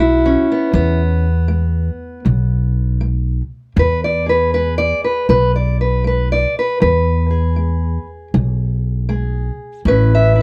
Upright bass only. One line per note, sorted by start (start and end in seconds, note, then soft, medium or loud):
0.00 0.35 B1 medium
0.74 1.88 E2 medium
2.26 3.40 B1 medium
3.77 4.92 E2 medium
5.29 6.44 B1 medium
6.82 7.96 E2 medium
8.34 9.49 B1 medium
9.85 10.42 A1 medium